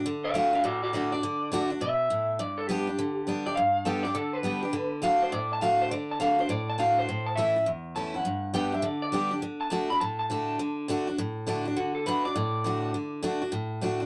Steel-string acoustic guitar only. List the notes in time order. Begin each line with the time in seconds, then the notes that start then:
0.06 D3
0.34 D3 A3 D4 F#4
0.53 D4 F#4
0.64 A2
0.93 D3 A3 D4 F#4
1.12 D4 F#4
1.23 D3
1.52 D3 A3 D4 F#4
1.70 D4 F#4
1.81 B2
2.10 A2
2.39 G2
2.69 G3 B3 D4 G4
2.87 D4 G4
2.99 D3
3.27 G3 B3 D4 G4
3.46 D4 G4
3.57 G2
3.85 G3 B3 D4 G4
4.05 D4 G4
4.15 D3
4.43 G3 B3 D4 G4
4.62 D4 G4
4.73 D3
5.02 D3 A3 D4 F#4
5.32 A2
5.61 D3 A3 D4 F#4
5.91 D3
6.20 D3 A3 D4 F#4
6.39 D4 F#4
6.49 A2
6.78 D3 A3 D4 F#4
7.09 A2
7.37 E3 A3 C#4 E4
7.56 C#4 E4
7.66 E2
7.96 E3 A3 C#4 E4
8.14 C#4 E4
8.25 G2
8.54 G3 B3 D4 G4
8.72 D4 G4
8.82 D3
9.12 G3 B3 D4 G4
9.31 D4 G4
9.42 D3
9.70 D3 A3 D4 F#4
9.90 D4 F#4
10.01 A2
10.30 D3 A3 D4 F#4
10.59 D3
10.88 D3 A3 D4 F#4
11.07 D4 F#4
11.18 A2
11.47 D3 A3 D4 F#4
11.65 D4 F#4
11.77 D3
12.06 D3 A3 D4 F#4
12.25 D4 F#4
12.36 A2
12.64 D3 A3 D4 F#4
12.94 D3
13.22 D3 A3 D4 F#4
13.42 D4 F#4
13.52 A2
13.81 D3 A3 D4 F#4
14.00 D4 F#4